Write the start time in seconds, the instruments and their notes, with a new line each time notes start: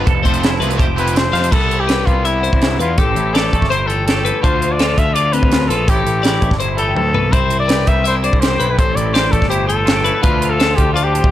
Already playing: clean electric guitar B4
0.06 picked electric bass F1, clean electric guitar F2 A4, kick, closed hi-hat
0.23 picked electric bass F1, overdriven electric guitar C3 F3 A3 C4, clean electric guitar C4 C5, kick, closed hi-hat
0.34 closed hi-hat
0.42 clean electric guitar F3 E4, snare, closed hi-hat
0.60 picked electric bass C2, overdriven electric guitar C3 F3 A3 C4, clean electric guitar B4, closed hi-hat
0.70 closed hi-hat
0.78 picked electric bass F1, clean electric guitar G4 C5, kick, closed hi-hat
0.95 clean electric guitar C3 E4, overdriven electric guitar C3 F3 A3 C4, trumpet B4, closed hi-hat
1.07 closed hi-hat
1.15 clean electric guitar C4, trumpet C5, snare, closed hi-hat
1.32 picked electric bass F2, overdriven electric guitar C3 F3 A3 C4, clean electric guitar C5 F5, closed hi-hat
1.36 snare
1.44 closed hi-hat
1.51 picked electric bass C2, clean electric guitar C3 B3 E4, trumpet A4, kick, crash
1.71 clean electric guitar E4, closed hi-hat
1.80 trumpet G4
1.88 clean electric guitar E4 B4, snare, closed hi-hat
2.06 picked electric bass C2, clean electric guitar G3, trumpet F4, kick, closed hi-hat
2.25 clean electric guitar B3 E5, trumpet E4, closed hi-hat
2.43 clean electric guitar G2 C5, closed hi-hat
2.53 picked electric bass C2, kick
2.62 clean electric guitar B3, snare, closed hi-hat
2.79 picked electric bass E2, clean electric guitar E4 B4, trumpet F4, closed hi-hat
2.96 picked electric bass A1, clean electric guitar A2 C4 A4, trumpet G4, kick, closed hi-hat
3.15 picked electric bass A1, clean electric guitar E4, closed hi-hat
3.34 clean electric guitar G4 D5, trumpet A4, snare, closed hi-hat
3.52 picked electric bass A1, clean electric guitar A3, kick, closed hi-hat
3.62 picked electric bass G1, kick, snare
3.70 clean electric guitar E4 C5, trumpet C5, closed hi-hat
3.87 clean electric guitar E3 G5, trumpet A4, closed hi-hat
4.07 clean electric guitar G4, trumpet A4, snare, closed hi-hat
4.25 clean electric guitar E4 B4, closed hi-hat
4.42 picked electric bass D2, clean electric guitar D3 D4 F4, trumpet C5, kick, closed hi-hat
4.61 clean electric guitar F4, closed hi-hat
4.72 trumpet D5
4.79 clean electric guitar F4 A4, snare, closed hi-hat
4.97 picked electric bass D2, clean electric guitar F3, trumpet E5, kick, closed hi-hat
5.14 clean electric guitar F4 D5, trumpet D5, closed hi-hat
5.33 clean electric guitar A2 C4, trumpet B4, closed hi-hat
5.43 picked electric bass D2, kick
5.52 clean electric guitar F4, snare, closed hi-hat
5.68 picked electric bass A#1, clean electric guitar F4 B4, trumpet A4, closed hi-hat
5.88 picked electric bass A1, clean electric guitar A2 A3 C4 E4 A4, trumpet G4, kick, closed hi-hat
6.05 picked electric bass A1, clean electric guitar E4, closed hi-hat
6.23 clean electric guitar E4 D5, snare, closed hi-hat
6.42 picked electric bass A1, clean electric guitar A3, kick, closed hi-hat
6.51 picked electric bass G1, kick, snare
6.60 clean electric guitar E4 C5, closed hi-hat
6.77 clean electric guitar E3 G5, trumpet A4, closed hi-hat
6.94 picked electric bass D2, clean electric guitar A2, trumpet A4, high tom
7.14 picked electric bass C2, clean electric guitar B2 B4, floor tom
7.32 picked electric bass C2, clean electric guitar C3 C4 E4, trumpet C5, kick, closed hi-hat
7.50 clean electric guitar E4, closed hi-hat
7.60 trumpet D5
7.68 clean electric guitar G4 B4, snare, closed hi-hat
7.87 picked electric bass C2, clean electric guitar G3, trumpet E5, kick, closed hi-hat
8.04 clean electric guitar E4 E5, trumpet C5, closed hi-hat
8.23 clean electric guitar G2 C5, trumpet D5, closed hi-hat
8.33 picked electric bass C2, kick
8.40 clean electric guitar G4, trumpet C5, snare, closed hi-hat
8.60 picked electric bass B1, clean electric guitar E4 B4, closed hi-hat
8.71 trumpet B4
8.77 picked electric bass A1, clean electric guitar A2 C4 A4, trumpet C5, kick, closed hi-hat
8.96 picked electric bass A1, clean electric guitar E4, trumpet D5, closed hi-hat
9.14 clean electric guitar G4 D5, trumpet C5, snare, closed hi-hat
9.31 picked electric bass A1, clean electric guitar A3, trumpet A4, kick, closed hi-hat
9.42 picked electric bass G1, kick, snare
9.49 clean electric guitar E4 C5, trumpet G4, closed hi-hat
9.67 clean electric guitar E3 G5, trumpet A4, closed hi-hat
9.85 clean electric guitar F4, snare, closed hi-hat
9.93 clean electric guitar G4
10.03 clean electric guitar E4 B4, closed hi-hat
10.21 picked electric bass D2, clean electric guitar D3 F3 D4 F4, trumpet B4, kick, closed hi-hat
10.42 clean electric guitar F4, closed hi-hat
10.50 trumpet A4
10.60 clean electric guitar F4 A4, snare, closed hi-hat
10.76 picked electric bass D2, clean electric guitar F3, trumpet G4, kick, closed hi-hat
10.93 clean electric guitar D4 D5, trumpet F4, closed hi-hat
11.03 trumpet G4
11.14 clean electric guitar A2 C5, closed hi-hat
11.24 picked electric bass D2, kick